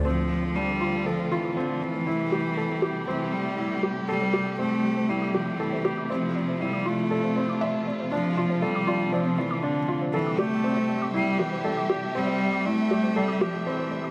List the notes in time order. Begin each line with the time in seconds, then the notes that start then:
0.05 D3 F3 A3 C4 F4 D5
0.30 D5
0.43 C5
0.55 G3 D4 D5
0.68 D6
0.81 F4 D5
1.06 F3 A4 D5
1.19 C5
1.31 E3 F4 D5
1.44 D6
1.57 D3 C4 D5
1.81 E3 D5
1.94 C5
2.06 C3 G3 E4 G4 D5
2.19 D6
2.32 G4 D5
2.57 A4 D5
2.70 C5
2.82 G4
2.95 D6
3.08 E3 C4 D5
3.32 G3 D5
3.45 C5
3.58 E4 D5
3.71 D6
3.83 G4 D5
4.08 G3 E4 A4 D5
4.21 C5
4.33 G4
4.46 D6
4.58 A3 C4 D5
4.84 D5
4.97 C5
5.09 G3 E4 D5
5.22 D6
5.34 F3 G4 D5
5.60 E3 A4 D5
5.72 C5
5.85 G4 D5
5.98 D6
6.10 F3 C4 F4 D5
6.35 D5
6.48 C5
6.60 G3 E4 D5
6.73 D6
6.85 A3 F4 D5
7.11 A4 D5
7.24 C5
7.36 C4 D5
7.49 D6
7.61 D5 E5
7.87 D5
8.00 C5
8.12 F3 D4 D5
8.37 F4 D5
8.50 C5
8.62 G3 A4 D5
8.75 D6
8.87 F4 D5
9.12 F3 C4 D5
9.25 C5
9.37 E3 D5
9.51 D6
9.62 D3 D4 D5
9.88 F4 D5
10.01 C5
10.13 E3 G3 G4 A4 D5 E5
10.27 D6
10.38 A3 G4 D5
10.64 C4 D5
10.77 C5
10.89 D5
11.02 D6
11.14 G3 E4 D5
11.39 E3 G4 D5
11.52 C5
11.64 A4 D5
11.77 D6
11.90 G4 D5
12.15 G3 A3 C4 D5
12.27 C5
12.40 D5
12.53 D6
12.65 A3 E4 D5
12.91 G4 D5
13.03 C5
13.16 G3 A4 D5
13.28 D6
13.41 F3 G4 D5
13.66 E3 C4 D5
13.79 C5
13.91 D5
14.04 D6